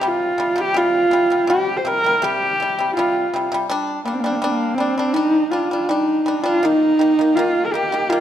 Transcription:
0.01 0.31 C3 medium
0.01 0.32 G3 medium
0.07 0.62 F4 medium
0.38 0.53 C3 medium
0.38 0.54 G3 medium
0.56 0.71 C3 medium
0.56 0.72 G3 medium
0.61 0.79 G4 medium
0.74 1.04 C3 medium
0.74 1.06 G3 medium
0.74 1.51 F4 medium
1.11 1.27 C3 medium
1.11 1.28 G3 medium
1.30 1.45 C3 medium
1.30 1.46 G3 medium
1.47 1.78 C3 medium
1.47 1.79 G3 medium
1.47 1.78 G4 medium
1.77 1.88 C5 medium
1.85 2.00 C3 medium
1.85 2.01 G3 medium
1.85 2.25 A#4 loud
2.04 2.19 C3 medium
2.04 2.20 G3 medium
2.22 2.52 C3 medium
2.22 2.53 G3 medium
2.22 2.96 G4 medium
2.60 2.74 C3 medium
2.60 2.75 G3 medium
2.79 2.93 C3 medium
2.79 2.94 G3 medium
2.97 3.26 C3 medium
2.97 3.27 G3 medium
2.97 3.47 F4 medium
3.34 3.48 C3 medium
3.34 3.49 G3 medium
3.52 3.66 C3 medium
3.52 3.67 G3 medium
3.70 3.99 G3 medium
3.70 4.00 D4 loud
4.05 4.20 G3 medium
4.05 4.14 A#3 medium
4.05 4.21 D4 medium
4.13 4.21 C4 medium
4.20 4.31 A#3 medium
4.24 4.39 G3 medium
4.24 4.40 D4 medium
4.30 4.37 C4 medium
4.35 4.46 A#3 medium
4.42 4.72 G3 medium
4.42 4.52 C4 medium
4.42 4.73 D4 medium
4.50 4.76 A#3 medium
4.74 4.93 G3 medium
4.74 5.14 C4 medium
4.80 4.95 D4 medium
4.98 5.12 G3 medium
4.98 5.13 D4 medium
5.13 5.44 G3 medium
5.13 5.46 D4 medium
5.13 5.52 D#4 medium
5.51 5.67 G3 medium
5.51 5.68 D4 medium
5.51 5.90 F4 medium
5.71 5.86 G3 medium
5.71 5.87 D4 medium
5.89 6.19 G3 medium
5.89 6.20 D4 medium
5.89 6.44 D#4 medium
6.26 6.41 G3 medium
6.26 6.42 D4 medium
6.44 6.59 G3 medium
6.44 6.60 D4 medium
6.44 6.67 F4 medium
6.63 6.92 D#3 medium
6.63 6.93 A#3 medium
6.63 7.37 D#4 medium
6.99 7.14 D#3 medium
6.99 7.15 A#3 medium
7.19 7.33 D#3 medium
7.19 7.34 A#3 medium
7.35 7.66 D#3 medium
7.35 7.67 A#3 medium
7.35 7.67 F4 medium
7.66 7.74 A#4 medium
7.72 7.88 D#3 medium
7.72 7.89 A#3 medium
7.72 8.11 G4 medium
7.92 8.07 D#3 medium
7.92 8.08 A#3 medium
8.09 8.20 D#3 medium
8.09 8.20 A#3 medium
8.09 8.20 F4 medium

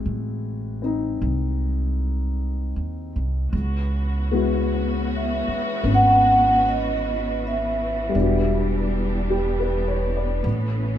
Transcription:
0.00 3.52 G#3 soft
0.00 0.80 C4 soft
0.00 3.53 E4 soft
0.00 3.53 F#4 soft
0.06 1.17 A1 medium
0.82 3.52 C4 soft
0.82 3.53 D#4 soft
1.22 2.72 C2 medium
2.76 3.12 D#2 medium
3.16 3.51 C2 medium
3.51 5.44 C#2 medium
3.51 10.98 E3 medium
3.51 8.10 B3 medium
3.51 8.10 C#4 medium
3.51 8.10 F#4 medium
4.31 8.15 G#3 soft
4.31 5.82 B3 soft
4.31 8.15 E4 soft
4.31 8.15 F#4 soft
5.16 5.85 E5 medium
5.48 muted upright bass stroke soft
5.83 8.10 G#1 medium
5.83 8.10 B3 soft
5.83 8.15 C#4 soft
5.94 6.62 F#5 medium
6.69 7.38 D#5 medium
7.47 8.53 E5 medium
8.09 10.41 G3 soft
8.09 10.42 B3 soft
8.15 10.40 E1 medium
8.15 10.42 G3 medium
8.15 10.98 B3 medium
8.15 10.44 D4 soft
8.15 10.42 D4 medium
8.15 10.45 E4 soft
8.21 10.47 F#4 soft
9.30 9.85 G4 soft
9.60 10.09 B4 soft
9.88 10.22 C#5 soft
10.17 10.56 D5 soft
10.44 10.98 A1 medium
10.44 10.98 A3 medium
10.44 10.98 C#4 medium

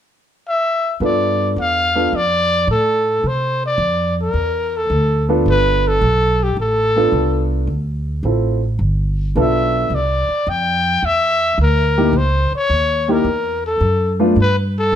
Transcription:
0.48 0.99 E5 medium
1.00 1.55 G2 medium
1.00 1.87 B3 medium
1.00 1.87 D4 soft
1.00 1.87 F4 medium
1.00 1.88 A4 medium
1.04 1.55 D5 medium
1.56 2.11 E2 medium
1.56 2.17 F5 loud
1.95 2.11 B3 medium
1.95 2.11 D4 medium
1.95 2.11 F4 soft
1.95 2.11 A4 medium
2.13 2.67 F2 medium
2.13 2.70 D5 loud
2.67 3.22 A2 medium
2.67 3.29 A4 medium
3.24 3.77 C3 medium
3.24 3.64 C5 medium
3.66 4.16 D5 medium
3.78 4.33 F2 medium
4.21 4.78 A#4 medium
4.34 4.88 E2 medium
4.77 5.31 A4 medium
4.90 5.44 D2 medium
5.29 5.99 B3 medium
5.29 5.99 D4 medium
5.29 5.99 F4 medium
5.29 5.99 A4 medium
5.46 6.00 G1 medium
5.50 5.89 B4 loud
5.88 6.45 A4 loud
6.01 6.56 B1 medium
6.43 6.59 G4 medium
6.57 7.11 A1 medium
6.57 7.49 A4 medium
6.96 7.66 B3 medium
6.96 7.66 D4 medium
6.96 7.66 F4 medium
6.96 7.66 A4 medium
7.12 7.67 C2 medium
7.67 8.22 D2 medium
8.23 8.78 A1 medium
8.23 8.59 C4 medium
8.23 8.59 E4 soft
8.23 8.59 F4 soft
8.23 8.59 A4 medium
8.79 9.34 G1 medium
9.36 9.89 B1 medium
9.36 9.92 B3 medium
9.36 9.92 D4 medium
9.36 9.92 F4 medium
9.36 9.92 A4 medium
9.40 9.96 E5 medium
9.90 10.26 C2 medium
9.95 10.51 D5 medium
10.29 muted upright bass stroke soft
10.47 11.01 F2 medium
10.47 11.07 G5 loud
11.03 11.57 E2 medium
11.03 11.60 E5 loud
11.58 12.12 D2 medium
11.58 12.19 A#4 medium
11.98 12.13 A#3 medium
11.98 12.13 D#4 medium
11.98 12.13 E4 medium
11.98 12.13 G4 medium
12.13 12.49 C#2 medium
12.17 12.54 C5 medium
12.51 muted upright bass stroke soft
12.56 13.13 C#5 medium
12.69 13.24 D#2 medium
13.08 13.24 A#3 medium
13.08 13.24 D#4 medium
13.08 13.24 E4 medium
13.08 13.24 G4 medium
13.08 13.65 A#4 medium
13.24 13.79 E2 medium
13.66 14.17 A4 medium
13.80 14.35 F#2 medium
14.20 14.35 A3 medium
14.20 14.35 B3 medium
14.20 14.35 D4 medium
14.20 14.35 F4 medium
14.36 14.90 G2 medium
14.40 14.56 B4 medium
14.79 14.96 A4 loud
14.92 14.96 C2 medium

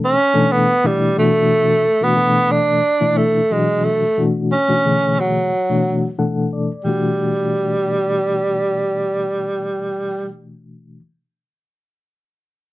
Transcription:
0.00 0.13 B2 medium
0.00 0.13 E3 medium
0.00 0.13 A3 medium
0.00 0.14 D4 medium
0.00 0.14 A4 medium
0.05 0.53 C#4 medium
0.34 0.72 B2 medium
0.34 0.72 E3 medium
0.34 0.72 A3 medium
0.34 0.72 D4 medium
0.34 0.72 A4 medium
0.52 0.88 B3 medium
0.84 1.16 B2 medium
0.84 1.16 E3 medium
0.84 1.18 G3 medium
0.84 1.16 A3 medium
0.84 1.17 D4 medium
0.84 1.17 E4 medium
1.17 1.83 B2 medium
1.17 1.84 E3 medium
1.17 1.83 A3 medium
1.17 2.05 A3 medium
1.17 1.84 D4 medium
1.17 1.84 F#4 medium
2.01 2.13 B2 medium
2.01 2.13 E3 medium
2.01 2.13 A3 medium
2.01 2.53 B3 medium
2.01 2.13 D4 medium
2.01 2.13 F#4 medium
2.16 2.81 B2 medium
2.16 2.81 E3 medium
2.16 2.81 A3 medium
2.16 2.81 D4 medium
2.16 2.81 A4 medium
2.51 3.19 D4 medium
3.01 3.39 B2 medium
3.01 3.39 E3 medium
3.01 3.39 A3 medium
3.01 3.40 D4 medium
3.01 3.39 E4 medium
3.17 3.53 A3 medium
3.51 4.03 B2 medium
3.51 4.03 E3 medium
3.51 4.03 F#3 medium
3.51 3.86 G#3 medium
3.51 4.03 D4 medium
3.51 4.03 F#4 medium
3.85 4.24 A3 medium
4.18 4.56 B2 medium
4.18 4.56 E3 medium
4.18 4.56 A3 medium
4.18 4.56 D4 medium
4.18 4.57 F#4 medium
4.52 5.21 C#4 medium
4.69 4.81 B2 medium
4.69 4.81 E3 medium
4.69 4.80 A3 medium
4.69 4.81 D4 medium
4.69 4.81 F#4 medium
4.85 5.49 B2 medium
4.85 5.49 D3 medium
4.85 5.49 E3 medium
4.85 5.49 A3 soft
4.85 5.49 G#4 medium
5.20 6.19 F#3 medium
5.70 6.07 B2 medium
5.70 6.08 E3 medium
5.70 6.08 A3 medium
5.70 6.08 D4 medium
5.70 6.08 F#4 medium
6.19 6.71 B2 medium
6.19 6.71 E3 medium
6.19 6.71 A3 medium
6.19 6.71 D4 medium
6.19 6.71 A4 medium
6.19 6.50 F#5 medium
6.53 6.83 D5 medium
6.85 10.99 B2 medium
6.85 10.99 E3 medium
6.85 10.29 G3 medium
6.85 11.00 A3 medium
6.85 11.00 D4 medium
6.85 11.01 F#4 medium

